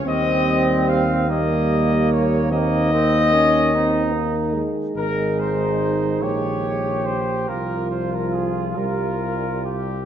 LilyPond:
<<
  \new Staff \with { instrumentName = "Trumpet section" } { \time 12/8 \key ees \mixolydian \tempo 4. = 48 ees''4 f''8 ees''4 des''8 ees''2~ ees''8 r8 | bes'8 c''4 des''4 c''8 bes'8 c''16 bes'16 aes'8 bes'4 g'8 | }
  \new Staff \with { instrumentName = "Flugelhorn" } { \time 12/8 \key ees \mixolydian c'4. bes4. bes8 c'8 des'8 ees'4 r8 | ees'4. g'4. f'2. | }
  \new Staff \with { instrumentName = "Euphonium" } { \time 12/8 \key ees \mixolydian c'4. bes4. c'8 bes8 des'8 c'8 bes8 aes8~ | aes2~ aes8 r8 f4. g4. | }
  \new Staff \with { instrumentName = "Euphonium" } { \clef bass \time 12/8 \key ees \mixolydian g4. g4. ees2. | ees2~ ees8 r8 f4. g4. | }
  \new Staff \with { instrumentName = "Tuba" } { \clef bass \time 12/8 \key ees \mixolydian ees,1~ ees,4. r8 | aes,,4. bes,,4. c,4. c,4. | }
>>